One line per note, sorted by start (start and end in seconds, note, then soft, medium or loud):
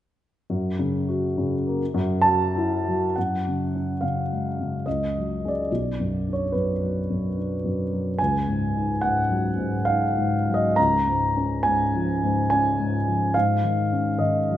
0.50 1.76 F#2 soft
0.79 1.26 C#3 soft
1.09 1.54 F#4 soft
1.38 1.80 C#3 soft
1.67 1.81 A#3 soft
1.94 3.12 F#2 soft
2.22 2.74 F#3 soft
2.22 3.15 A5 medium
2.56 3.05 E4 soft
2.88 3.17 F#3 soft
3.16 4.83 F#2 soft
3.16 4.02 F#5 soft
3.47 3.92 C#3 soft
3.75 4.20 C#4 soft
4.01 4.47 C#3 soft
4.01 4.85 F5 soft
4.32 4.76 G#3 soft
4.60 4.87 C#3 soft
4.86 5.68 C#2 soft
4.86 5.49 D#5 soft
5.18 5.60 F#3 soft
5.45 5.69 C#4 soft
5.45 5.69 G#4 soft
5.45 6.32 D5 soft
5.72 8.16 B1 soft
6.00 6.43 F#2 soft
6.28 6.71 D4 soft
6.33 6.53 C#5 soft
6.52 6.99 F#2 soft
6.52 7.36 B4 soft
6.83 7.26 F#3 soft
7.10 7.53 F#2 soft
7.38 7.81 D4 soft
7.64 8.08 F#2 soft
7.92 8.19 F#3 soft
8.19 10.74 C#2 soft
8.19 9.01 G#5 medium
8.48 8.91 G#2 soft
8.76 9.19 D#4 soft
9.01 9.47 G#2 soft
9.01 9.86 F#5 medium
9.29 9.74 F#3 soft
9.58 10.03 G#2 soft
9.85 10.35 D#4 soft
9.85 10.54 F5 medium
10.18 10.66 G#2 soft
10.49 10.79 F#3 soft
10.54 10.77 D#5 medium
10.76 13.30 C#2 soft
10.76 11.64 A#5 medium
11.08 11.53 G#2 soft
11.37 11.82 C#4 soft
11.63 12.10 G#2 soft
11.63 12.49 G#5 medium
11.95 12.39 F3 soft
12.24 12.68 G#2 soft
12.50 12.96 C#4 soft
12.50 13.34 G#5 medium
12.80 13.24 G#2 soft
13.07 13.34 F3 soft
13.34 14.57 G#2 soft
13.34 14.20 F5 medium
13.64 14.09 D#3 soft
13.93 14.38 C#4 soft
14.19 14.57 D#3 soft
14.19 14.57 D#5 medium
14.50 14.57 F#3 soft